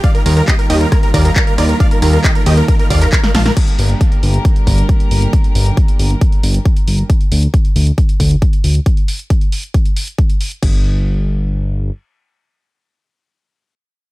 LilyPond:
<<
  \new Staff \with { instrumentName = "Supersaw synth" } { \time 4/4 \key g \minor \tempo 4 = 136 << { <d'' f''>8 r8 <g' ees''>8 <g' ees''>8 r8 <bes' d''>8 r8 <bes' d''>8 | <d'' f''>8 r8 <g' ees''>8 <g' ees''>8 r8 <d'' f''>8 r8 <f'' a''>8 | r1 | r1 |
r1 | r1 | r1 | r1 | } \\ { r16 bes'16 bes'16 bes'16 r16 bes'16 r16 bes'16 bes'16 bes'16 r16 bes'16 bes'16 bes'16 r16 bes'16 | r16 bes'16 bes'16 bes'16 r16 bes'16 r16 bes'16 bes'16 bes'16 r16 bes'16 bes'16 bes'16 r16 bes'16 | r1 | r1 |
r1 | r1 | r1 | r1 | } >> }
  \new Staff \with { instrumentName = "String section" } { \time 4/4 \key g \minor << { <f' g'>1 | a'1 | <g' bes'>1~ | <g' bes'>1 |
r1 | r1 | r1 | r1 | } \\ { <ees g bes>1~ | <ees g bes>1 | <d g bes>1~ | <d g bes>1 |
r1 | r1 | r1 | r1 | } >> }
  \new Staff \with { instrumentName = "Analog synth bass" } { \clef bass \time 4/4 \key g \minor r8 ees,8 r8 ees,8 r8 ees,8 r8 ees,8 | r8 ees,8 r8 ees,8 r8 ees,8 r8 bes,,8 | r8 g,,8 r8 g,,8 r8 g,,8 r8 g,,8 | r8 g,,8 r8 g,,8 r8 g,,8 r8 g,,8 |
r8 d,8 r8 d,8 r8 d,8 r8 d,8 | r1 | g,,2. r4 | r1 | }
  \new DrumStaff \with { instrumentName = "Drums" } \drummode { \time 4/4 <hh bd>16 hh16 <hho cymr>16 hh16 <hc hh bd>16 hh16 <hho cymr>16 hh16 <hh bd ss>16 hh16 <hho bd cymr>16 hh16 <hc hh bd>16 hh16 <hho cymr ss>16 hh16 | <hh bd>16 hh16 <hho cymr ss>16 hh16 <hc hh bd>16 hh16 <hho cymr>16 hh16 <hh bd>16 hh16 <hho bd cymr>16 <hc hh>16 <hc hh bd>16 <hh sn>16 <hho cymr sn>16 <hh sn>16 | <cymc hh bd>16 hh16 hho16 hh16 <hh bd>16 hh16 hho16 hh16 <hh bd>16 hh16 <hho bd>16 hh16 <hh bd>16 hh16 hho16 hh16 | <hh bd>16 hh16 hho16 hh16 <hh bd>16 hh16 hho16 hh16 <hh bd>16 hh16 hho16 hh16 <hh bd>16 hh16 hho16 hh16 |
<hh bd>16 hh16 hho16 hh16 <hh bd>16 hh16 hho16 hh16 <hh bd>16 hh16 <hho bd>16 hh16 <hh bd>16 hh16 hho16 hh16 | <hh bd>16 hh16 hho16 hh16 <hh bd>16 hh16 hho16 hh16 <hh bd>16 hh16 hho16 hh16 <hh bd>16 hh16 hho16 hh16 | <cymc bd>4 r4 r4 r4 | r4 r4 r4 r4 | }
>>